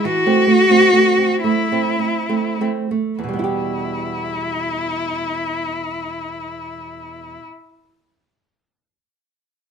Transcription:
0.04 E3 F#4
0.26 A3 C4
0.47 A3
0.70 A3 C4
0.93 A3 C4
1.18 C4
1.44 A3 E4
1.72 A3 C4
1.99 C4
2.29 A3 C4
2.61 A3 C4
2.91 A3
3.19 E2 E4
3.24 B2
3.29 G3
3.34 B3
3.39 E4
3.44 G4

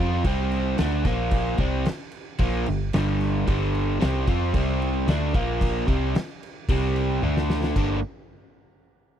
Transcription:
Already playing: F2 F3
0.00 C4 F4
0.24 C2 C3 G3 C4, kick, crash
0.52 crash
0.78 D2 D3 A3 D4, snare, crash
1.05 A#1 A#2 F3 A#3, kick, snare, crash
1.31 kick, crash
1.58 C2 C3 G3 C4, kick, crash
1.86 muted overdriven electric guitar stroke, muted fingered electric bass stroke, snare, crash
2.11 crash
2.38 A#1 A#2 F3 A#3, kick, crash
2.66 G1 G2 D3, crash
2.93 G1 G2 D3 G3, snare, crash
3.20 snare, crash
3.47 G1 G2 D3 G3, kick, crash
3.75 crash
4.00 C2 C3 G3 C4, snare, crash
4.27 F2 F3 C4 F4, kick, crash
4.54 C2 C3 G3 C4, kick, crash
4.82 crash
5.07 D2 D3 A3 D4, snare, crash
5.34 A#1 A#2 F3 A#3, kick, crash
5.61 kick, crash
5.88 C2 C3 G3 C4, kick, crash
6.15 muted overdriven electric guitar stroke, snare, crash
6.43 crash
6.69 C2 C3 G3 C4, kick, crash
6.96 crash
7.23 D2 D3 A3 D4, high tom
7.37 snare
7.50 snare
7.64 snare
7.76 G1 G2 D3 G3 A#3 D4, kick, crash

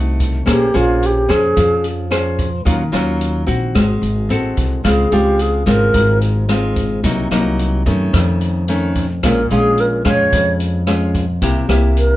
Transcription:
Already playing: C2 C3 A3 D#4 F#4
0.20 kick, closed hi-hat
0.46 A#1 A#3 C#4 G#4 C5, kick, cross-stick, closed hi-hat
0.51 G4
0.74 A#1 C#4 F4 G#4 C5, closed hi-hat
1.02 G4, closed hi-hat
1.28 F2 C#4 G#4 C5, kick, cross-stick, closed hi-hat
1.56 F2 F3, kick, closed hi-hat
1.84 closed hi-hat
2.10 C#4 G#4 C5, cross-stick, closed hi-hat
2.39 kick, closed hi-hat
2.65 D#2 D#3 F#3 C#4 F4, kick, closed hi-hat
2.92 D#2 F#3 C#4 F4, cross-stick, closed hi-hat
3.21 closed hi-hat
3.47 A#1 C4 F#4, kick, closed hi-hat
3.75 G#1 G#3, kick, cross-stick, closed hi-hat
4.02 G#1, closed hi-hat
4.29 A1 C4 F#4 A4, closed hi-hat
4.57 C2, kick, closed hi-hat
4.84 C#2 C#3 G#3 C4 F4 G#4, kick, cross-stick, closed hi-hat
5.11 C#2 G#3 C4 F4 G4, closed hi-hat
5.39 G#4, closed hi-hat
5.66 G#1 G#3 C4 F4 A#4, kick, cross-stick, closed hi-hat
5.94 G#1 G#2, kick, closed hi-hat
6.21 closed hi-hat
6.49 G#3 C4 F4, cross-stick, closed hi-hat
6.76 kick, closed hi-hat
7.04 C2 C3 F#3 A#3 D#4, kick, closed hi-hat
7.31 C2 F#3 A#3 D#4, cross-stick, closed hi-hat
7.59 closed hi-hat
7.86 F#2 D#3 A3 C#4, kick, closed hi-hat
8.13 F2, kick, cross-stick, closed hi-hat
8.41 closed hi-hat
8.68 D#3 A3 C#4, closed hi-hat
8.95 kick, closed hi-hat
9.23 A#1 A#2 G#3 C#4 F4 A#4, kick, cross-stick, closed hi-hat
9.50 A#1 G#3 C#4 F4 G#4, closed hi-hat
9.78 A#4, closed hi-hat
10.05 F2 G#3 C#4 F4 C#5, kick, cross-stick, closed hi-hat
10.33 F2, kick, closed hi-hat
10.60 closed hi-hat
10.87 G#3 C#4 F4, cross-stick, closed hi-hat
11.15 kick, closed hi-hat
11.42 C2 C3 A#3 E4 G4, kick, closed hi-hat
11.69 C2 A#3 E4 G4, cross-stick, closed hi-hat
11.97 A#4, closed hi-hat

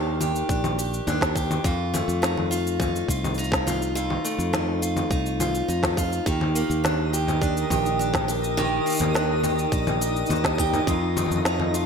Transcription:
Already playing: D#2 D#3 A#3 D4 G4
0.21 G4, low conga, cabasa
0.36 cabasa
0.49 A#1 D4, kick, cabasa
0.64 low conga, cabasa
0.79 G4, cabasa
0.94 cabasa
1.07 D#2 D4, low conga, cabasa
1.21 kick, snare, cabasa
1.36 G4, kick, cabasa
1.51 low conga, cabasa
1.64 F2 F4, kick, cabasa
1.94 A3, low conga, cabasa
2.08 F2, cabasa
2.22 D#4, snare, cabasa
2.38 low conga
2.51 F4, cabasa
2.67 cabasa
2.80 D#4, kick, low conga, cabasa
2.96 cabasa
3.08 C2 F4, kick, cabasa
3.24 low conga, cabasa
3.34 D#4, cabasa
3.39 cabasa
3.44 cabasa
3.52 kick, snare, cabasa
3.67 F4, low conga, cabasa
3.82 cabasa
3.95 F2 F4, cabasa
4.10 low conga
4.25 A3, cabasa
4.38 F2, cabasa
4.53 D#4, snare, low conga, cabasa
4.82 F4, cabasa
4.97 low conga, cabasa
5.10 C2 D#4, kick, cabasa
5.26 cabasa
5.40 F4, low conga, cabasa
5.55 cabasa
5.68 F2 D#4, cabasa
5.83 kick, snare, low conga, cabasa
5.97 F4, kick, cabasa
6.13 cabasa
6.26 D#2 D#3 D#4 G4 A#4 G5 D#6, kick, cabasa
6.41 low conga
6.55 A#3, cabasa
6.70 D#2, cabasa
6.84 D4, snare, low conga, cabasa
7.13 G4, cabasa
7.28 low conga, cabasa
7.42 D4, kick, cabasa
7.57 cabasa
7.70 A#1 G4, kick, low conga, cabasa
7.86 cabasa
7.99 D4, cabasa
8.14 kick, snare, low conga, cabasa
8.28 G4, cabasa
8.44 cabasa
8.57 D#3 G4, low conga, cabasa
8.86 A#3, cabasa
8.90 cabasa
8.92 cabasa
8.94 cabasa
8.97 cabasa
8.99 D#2, low conga, cabasa
9.01 cabasa
9.14 D4, snare, cabasa
9.43 G4, low conga, cabasa
9.59 cabasa
9.72 A#1 D4, kick, cabasa
9.87 low conga, cabasa
10.01 G4, cabasa
10.16 cabasa
10.26 D#2 D4, cabasa
10.30 low conga, cabasa
10.35 cabasa
10.44 kick, snare, cabasa
10.58 G4, kick, cabasa
10.73 low conga, cabasa
10.87 F2 F4 D#5 A5, kick, cabasa
11.17 A3, low conga, cabasa
11.26 low conga
11.31 F2, cabasa
11.36 low conga
11.45 D#4, snare, cabasa
11.60 low conga
11.74 F4, cabasa

